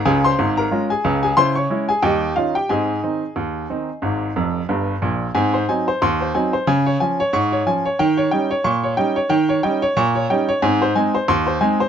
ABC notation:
X:1
M:2/4
L:1/16
Q:"Swing 16ths" 1/4=91
K:Ab
V:1 name="Upright piano"
[Aa] [cc']2 [Bb]2 [Aa]2 [Aa] | [cc'] [dd']2 [Aa] [Geg]2 [Ff] [Gg] | [Aea]8- | [Aea]6 z2 |
a c a c c' c a c | a d a d d' d a d | g d g d d' d g d | g d g d d' d g d |
a c a c c' c a c |]
V:2 name="Upright piano" clef=bass
[D,,D,]2 [A,,,A,,]2 [A,DF]2 [D,,D,]2 | [D,_F]2 [A,DF]2 [E,,G,]2 [E,DE]2 | [A,,C]2 [E,CE]2 E,,2 [E,CE]2 | [A,,,A,,]2 [F,,,F,,]2 [G,,,G,,]2 [B,,,B,,]2 |
[A,,C]2 [_G,CE]2 E,,2 [G,CE]2 | D,2 [F,D]2 A,,2 [F,D]2 | E,2 [G,DE]2 B,,2 [G,DE]2 | E,2 [G,DE]2 B,,2 [G,DE]2 |
[A,,C]2 [A,CE]2 E,,2 [A,CE]2 |]